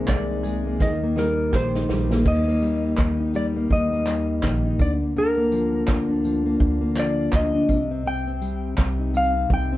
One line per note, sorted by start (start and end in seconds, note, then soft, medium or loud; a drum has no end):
0.00 0.79 D#3 medium
0.00 0.44 G#3 medium
0.00 0.66 A#3 medium
0.00 1.89 A#3 medium
0.00 0.31 D#4 medium
0.07 0.77 C2 loud
0.07 0.81 C3 medium
0.07 0.89 C4 medium
0.07 0.82 D5 medium
0.07 kick loud
0.07 clap loud
0.07 clap medium
0.31 1.75 D#4 medium
0.43 0.90 G#3 medium
0.43 0.89 G#4 medium
0.43 tambourine medium
0.67 1.03 A#3 medium
0.79 1.49 D#2 medium
0.79 2.84 D#3 medium
0.79 1.54 D#3 medium
0.79 1.50 D#5 medium
0.79 kick loud
0.79 snare medium
1.03 2.11 A#3 medium
1.16 1.89 G3 medium
1.16 2.84 D#4 medium
1.16 1.55 A#4 medium
1.16 snare medium
1.53 1.87 A#1 medium
1.53 2.25 D#3 medium
1.53 2.84 G4 medium
1.53 2.29 C5 medium
1.53 kick loud
1.53 snare medium
1.53 clap medium
1.75 3.19 D#4 medium
1.75 snare medium
1.89 2.23 A#1 medium
1.89 2.62 G3 medium
1.89 2.84 A#3 medium
1.89 snare loud
2.11 2.47 A#3 medium
2.11 snare medium
2.25 2.94 D#2 loud
2.25 2.97 D#3 medium
2.25 3.31 D#5 loud
2.25 kick loud
2.25 crash loud
2.48 3.56 A#3 medium
2.62 3.34 G3 medium
2.62 tambourine medium
2.98 3.67 D#2 medium
2.98 3.70 D#3 medium
2.98 kick loud
2.98 clap loud
2.98 clap medium
3.20 4.64 D#4 medium
3.34 4.06 G3 medium
3.34 3.46 D5 medium
3.34 tambourine medium
3.56 3.92 A#3 medium
3.70 4.39 D#2 loud
3.70 4.41 D#3 medium
3.70 4.81 D#5 loud
3.70 kick loud
3.92 5.02 A#3 medium
4.07 4.88 G3 medium
4.07 clap medium
4.07 tambourine medium
4.42 4.77 A#1 loud
4.42 4.79 D#3 medium
4.42 kick loud
4.42 clap loud
4.42 clap medium
4.65 4.88 D#4 medium
4.79 5.84 D2 loud
4.79 5.15 D3 medium
4.79 4.91 D5 medium
4.79 kick loud
4.79 tambourine medium
5.02 5.36 A#3 medium
5.17 5.87 D3 medium
5.17 7.03 A#4 loud
5.38 6.45 A#3 medium
5.52 6.23 F3 medium
5.52 tambourine medium
5.88 6.57 D2 medium
5.88 6.59 D3 medium
5.88 kick loud
5.88 clap loud
5.88 clap medium
6.09 7.54 D4 medium
6.24 6.95 F3 medium
6.24 tambourine medium
6.46 6.80 A#3 medium
6.60 7.29 D2 loud
6.60 7.31 D3 medium
6.60 kick loud
6.81 7.77 A#3 medium
6.96 7.77 F3 medium
6.96 7.35 D5 loud
6.96 clap medium
6.96 tambourine medium
7.33 7.66 D2 loud
7.33 7.69 D3 medium
7.33 8.09 D#5 loud
7.33 kick loud
7.33 clap loud
7.33 clap medium
7.55 7.78 D4 medium
7.69 8.74 C2 loud
7.69 8.05 C3 medium
7.69 kick loud
7.69 tambourine medium
7.91 8.27 C4 medium
8.06 8.76 C3 medium
8.06 9.11 G5 loud
8.27 9.36 C4 medium
8.42 9.13 G3 medium
8.42 tambourine medium
8.78 9.46 C2 loud
8.78 9.50 C3 medium
8.78 kick loud
8.78 clap loud
8.78 clap medium
8.99 9.78 D#4 medium
9.14 9.78 G3 medium
9.14 9.53 F5 loud
9.14 tambourine medium
9.37 9.72 C4 medium
9.50 9.78 C2 loud
9.50 9.78 C3 medium
9.50 9.78 G5 loud
9.50 kick loud
9.72 9.78 C4 medium